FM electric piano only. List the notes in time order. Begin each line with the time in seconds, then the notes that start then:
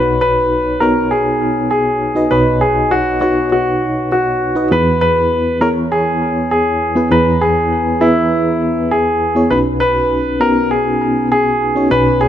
Already playing: B1 B2 D#4 F#4 B4 C#5
0.81 B3 D#4 F#4 C#5
2.15 D#4 F#4 B4 D#5
2.31 B1 B2 D#4 F#4 B4 C#5
3.21 D#4 F#4 B4 C#5
4.55 D#4 F#4 B4 D#5
4.71 E2 E3 B3 E4 G#4 B4
5.61 B3 E4 G#4 C#5
6.95 B3 E4 G#4 B4
7.11 E2 E3 B3 E4 G#4 A#5
8.00 B3 E4 G#4 B4
9.35 B3 E4 G#4 C#5
9.50 B1 B2 C#4 D#4 F#4 B4
10.40 B3 C#4 D#4 F#4
11.75 C#4 D#4 F#4 C#5
11.91 B1 B2 C#4 D#4 F#4 C#5